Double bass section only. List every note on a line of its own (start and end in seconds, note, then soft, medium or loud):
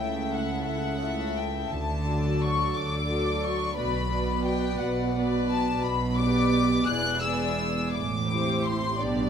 0.00 0.54 C#2 medium
0.67 1.59 C#2 medium
1.71 2.62 D2 medium
2.75 3.65 D2 medium
3.78 4.70 B1 medium
4.82 5.71 B1 medium
5.83 6.75 B1 medium
6.87 7.81 E1 medium
7.94 8.86 A1 medium
8.99 9.30 B1 medium